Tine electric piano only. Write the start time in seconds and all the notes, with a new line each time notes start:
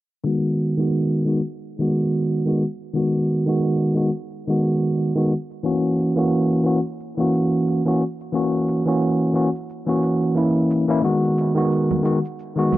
0.24 D#3 G#3 B3 F#4
0.77 D#3 G#3 B3 F#4
1.25 D#3 G#3 B3 F#4
1.78 D#3 G#3 B3 F#4
2.45 D#3 G#3 B3 F#4
2.93 D#3 G#3 B3 F#4
3.46 D#3 G#3 B3 F#4
3.94 D#3 G#3 B3 F#4
4.47 D#3 G#3 B3 F#4
5.15 D#3 G#3 B3 F#4
5.63 E3 A#3 C#4 F#4
6.16 E3 A#3 C#4 F#4
6.64 E3 A#3 C#4 F#4
7.17 E3 A#3 C#4 F#4
7.85 E3 A#3 C#4 F#4
8.32 E3 A#3 C#4 F#4
8.86 E3 A#3 C#4 F#4
9.33 E3 A#3 C#4 F#4
9.87 E3 A#3 C#4 F#4
10.35 E3 A#3 C#4 E4
10.88 E3 A#3 C#4 E4
11.02 D#3 G#3 B3 F#4
11.55 D#3 G#3 B3 F#4
12.03 D#3 G#3 B3 F#4
12.56 D#3 G#3 B3 F#4